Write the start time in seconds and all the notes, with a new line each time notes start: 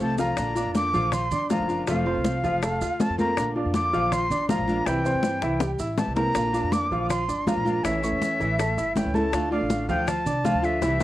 Already playing: A3 A4 C5
0.00 C2 C3 F3 A3 C4 F4 A5, high conga, maracas
0.18 F3 A3 C4 F4 F5 A#5, low bongo, maracas
0.37 A#1 D3 A#3 D4 F4, high bongo, high conga, maracas
0.55 A#3 D4 F4 D5 D6, high bongo, high conga, maracas
0.66 F2
0.74 D3 A#3 D4 F4 D6, high bongo, high conga, maracas
0.93 A#1 F3 F4 F5, high bongo, high conga, maracas
1.12 C6, muted nylon-string guitar stroke, high bongo, high conga, low conga, maracas
1.31 G1 D4 D5 D6, high bongo, high conga, low conga, maracas
1.50 D3 F3 A#3 D4 F4 F5 A#5, high bongo, low bongo, high conga, maracas
1.60 F#1
1.68 A#3 D4 F4, maracas
1.87 F1 C3 F3 A3 C4 F4 F5, high bongo, high conga, maracas
2.05 F3 A3 C4 F4 C5 C6, high bongo, high conga
2.15 C2
2.24 F3 A3 C4 F4, high bongo, high conga, maracas
2.43 F1 F3 F4 F5, high bongo, high conga, maracas
2.62 A3 A4 A5, muted nylon-string guitar stroke, high bongo, high conga, maracas
2.81 D2 F4 F5 F6, high bongo, high conga, maracas
2.99 F3 A3 C4 F4 A5, high bongo, low bongo, high conga, maracas
3.09 F2
3.18 F3 A3 A#3 C4 F4 A#4 A#5, high conga, maracas
3.37 A#1 D3 A#3 D4 F4, high bongo, high conga, maracas
3.55 A#3 D4 F4 D5 D6, high bongo, high conga
3.65 F2
3.74 D3 A#3 D4 F4 D6, high bongo, high conga, maracas
3.93 A#1 F3 F4 F5, high bongo, high conga, maracas
4.11 C6, muted nylon-string guitar stroke, high bongo, high conga, low conga, maracas
4.30 G1 D4 D5 D6, high bongo, high conga, low conga, maracas
4.49 D3 F3 A#3 D4 F4 F5 A#5, high bongo, low bongo, high conga, maracas
4.58 A#1
4.68 A#3 D4 F4, high conga, maracas
4.86 C2 C3 E3 G3 C4 E4 E5 G5, high bongo, high conga, maracas
5.04 E3 G3 C4 E4 C5 C6, high bongo, high conga, maracas
5.14 G2
5.23 E3 G3 C4 E4, high bongo, high conga, maracas
5.42 C2 E3 E4 E5, high bongo, high conga, maracas
5.60 G3 G4 G5, muted nylon-string guitar stroke, low bongo, high conga, maracas
5.79 A1 E4 E5 E6, high conga, maracas
5.97 E3 G3 C4 E4 A5, low bongo, high conga, maracas
6.07 C2
6.16 E3 G3 A#3 C4 E4 A#4 A#5, low bongo, high conga, maracas
6.35 A#1 D3 A#3 D4 F4, high bongo, high conga, maracas
6.53 A#3 D4 F4 D5 D6, high bongo, high conga, maracas
6.63 F2
6.72 D3 A#3 D4 F4 D6, high bongo, high conga, maracas
6.91 A#1 F3 F4 F5, high bongo, high conga, maracas
7.09 C6, muted nylon-string guitar stroke, high bongo, high conga, low conga, maracas
7.28 G1 D4 D5 D6, high bongo, high conga, maracas
7.46 D3 F3 A#3 D4 F4 F5 A#5, high bongo, low bongo, high conga, maracas
7.57 A#1
7.65 A#3 D4 F4, high conga, maracas
7.84 A1 E3 A3 C#4 E4 E5, high bongo, high conga, maracas
8.02 A3 C#4 E4 C#5 C#6, high bongo, high conga, maracas
8.12 E2
8.21 E3 A3 C#4 E4, high bongo, high conga, maracas
8.40 A1 E3 E4 E5, high bongo, high conga, maracas
8.59 A3 A4 A5, muted nylon-string guitar stroke, high bongo, high conga, maracas
8.77 G1 E4 E5 E6, high bongo, high conga, maracas
8.96 E3 A3 C#4 E4 G5, high bongo, low bongo, high conga, maracas
9.05 C#2
9.14 A3 C#4 E4 A4 A5, high conga, maracas
9.33 D2 D3 A3 D4 F4, high bongo, high conga, maracas
9.51 A3 D4 F4 D5 F5 D6, high bongo, high conga
9.61 A1
9.70 D3 A3 D4 F4, high bongo, high conga, maracas
9.89 D2 F3 F4 F5 G5, high bongo, high conga, maracas
10.07 A5, muted nylon-string guitar stroke, high bongo, high conga, low conga, maracas
10.26 C2 D4 D5 D6, high bongo, high conga, low conga, maracas
10.44 D3 F3 A3 D4 F4 F5, high bongo, low bongo, high conga, maracas
10.54 D2
10.62 A3 D4 F4 E5, maracas
10.81 C2 C3 E3 G3 C4 E4 E5, high bongo, high conga, maracas
10.99 C4 E4, high bongo, high conga, maracas